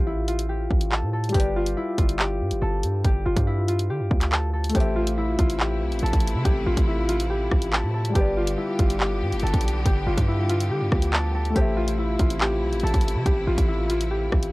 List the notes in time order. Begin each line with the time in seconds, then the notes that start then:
Already playing: A1 A3 F4 G4 A4 C5 E5
0.07 E4
0.28 F4, closed hi-hat
0.39 closed hi-hat
0.49 G4
0.71 A1, kick
0.81 closed hi-hat
0.92 A4, clap
1.03 A2
1.13 A4
1.24 closed hi-hat
1.29 G3 G4, closed hi-hat
1.34 G1 G4 B4, kick, closed hi-hat
1.40 D5, closed hi-hat
1.56 F4
1.66 closed hi-hat
1.77 E4
1.98 G1 F4, kick, closed hi-hat
2.09 closed hi-hat
2.19 G4, clap
2.41 G2
2.51 G1, closed hi-hat
2.62 G1 A4
2.83 G2, closed hi-hat
3.05 G1 G4, kick, closed hi-hat
3.26 G1 F4
3.37 G2, kick, closed hi-hat
3.47 E4
3.68 F4, closed hi-hat
3.79 closed hi-hat
3.90 D3 G4
4.00 G2
4.11 D2, kick
4.21 clap, closed hi-hat
4.32 A4, clap
4.53 A4
4.64 closed hi-hat
4.69 A3 A4, closed hi-hat
4.75 A1 C3 E3 A3 E4 G4 C5, kick, closed hi-hat
4.80 E5, closed hi-hat
4.96 F4
5.07 closed hi-hat
5.18 E4
5.39 A1 F4, kick, closed hi-hat
5.50 closed hi-hat
5.60 G4, clap
5.81 B1
5.92 A1, closed hi-hat
5.99 A1 A4, closed hi-hat
6.06 closed hi-hat
6.13 A1, kick, closed hi-hat
6.20 closed hi-hat
6.27 closed hi-hat
6.34 C3
6.44 A1 G4, kick, closed hi-hat
6.66 A1 F4
6.77 A1, kick, closed hi-hat
6.87 E4
7.09 F4, closed hi-hat
7.20 closed hi-hat
7.30 G4
7.51 A1, kick, cross-stick
7.62 closed hi-hat
7.73 A4, clap
7.83 A2
7.94 A4
8.05 closed hi-hat
8.10 G3 G4
8.15 G1 D3 G3 B3 G4 B4, kick, closed hi-hat
8.21 D5
8.37 F4
8.47 closed hi-hat
8.58 E4
8.79 G1 F4, kick, closed hi-hat
8.90 closed hi-hat
9.00 G4, clap
9.22 G2
9.32 G1, closed hi-hat
9.40 G1 A4, closed hi-hat
9.47 closed hi-hat
9.54 B1, kick, closed hi-hat
9.61 closed hi-hat
9.68 closed hi-hat
9.86 G1 G4, kick, closed hi-hat
10.06 G1 F4
10.17 G2, kick, closed hi-hat
10.28 E4
10.49 F4, closed hi-hat
10.60 closed hi-hat
10.71 D3 G4
10.81 G2
10.92 D2, kick, cross-stick
11.02 closed hi-hat
11.13 A4, clap
11.34 A4
11.45 closed hi-hat
11.50 A3 A4
11.56 A1 C3 E3 A3 E4 G4 C5, kick, closed hi-hat
11.61 E5
11.77 F4
11.88 closed hi-hat
11.98 E4
12.19 A1 F4, kick, closed hi-hat
12.30 closed hi-hat
12.41 G4, clap
12.62 B1
12.73 A1, closed hi-hat
12.80 A1 A4, closed hi-hat
12.87 closed hi-hat
12.94 A1, kick, closed hi-hat
13.01 closed hi-hat
13.08 closed hi-hat
13.15 C3
13.26 A1 G4, kick, closed hi-hat
13.47 A1 F4
13.58 A1, kick, closed hi-hat
13.68 E4
13.90 F4, closed hi-hat
14.01 closed hi-hat
14.11 G4
14.32 A1, kick, cross-stick
14.43 closed hi-hat